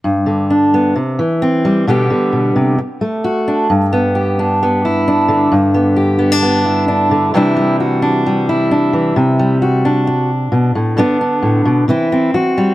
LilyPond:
\new Staff \with { instrumentName = "Steel-string acoustic guitar" } { \time 4/4 \key g \major \tempo 4 = 132 << { r4 d'8 b8 r4 c'8 g8 | <d g b g'>2 r4 fis'8 d'8 | r8 b8 g'8 d'8 b8 e'8 d'4 | r8 b8 g'8 b16 d'16 b8 e'8 d'4 |
<e g d' e'>8 g8 fis'8 d'8 g8 e'8 d'4 | r8 g8 fis'8 d'2~ d'8 | <d b d'>8 d'4. <e c' e'>8 c'8 fis'8 g8 | } \\ { g,8 d4. c8 e4. | b,8 d8 b,8 c8 r8 a4. | g,2.~ g,8 d8 | g,2.~ g,8 d8 |
c2.~ c8 e8 | c2. b,8 a,8 | g,4 a,8 b,8 c4 e4 | } >> }